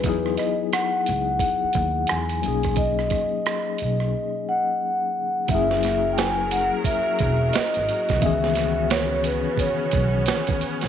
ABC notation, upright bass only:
X:1
M:4/4
L:1/16
Q:"Swing 16ths" 1/4=88
K:F#mix
V:1 name="Upright bass" clef=bass
E,,2 z4 C,,2 z2 D,,2 E,,2 B,,,2- | B,,,2 z4 B,,,2 z8 | F,,,6- F,,, z3 E,,,2 z G,,, z ^B,,, | C,,6- C,, z3 B,,,2 z D,, z A,,, |]